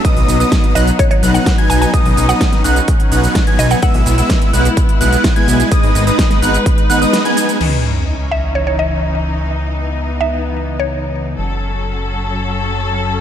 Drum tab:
CC |----------------|----------------|----------------|----------------|
HH |xooxxxoxxxoxxxox|xooxxxoxxxooxxox|xooxxxoxxxoxxxox|xooxxxoxxxooxxox|
SH |x-xxx-xxx-xxx-xx|x-xxx-xxx-xxx-xx|x-xxx-xxx-xxx-xx|x-xxx-xxx-xxx-xx|
SD |----o-------o---|----oo------o---|----o-------o---|----oo------o---|
BD |o---o---o---o---|o---o---o---o---|o---o---o---o---|o---o---o-------|

CC |x---------------|----------------|----------------|
HH |----------------|----------------|----------------|
SH |----------------|----------------|----------------|
SD |----------------|----------------|----------------|
BD |----------------|----------------|----------------|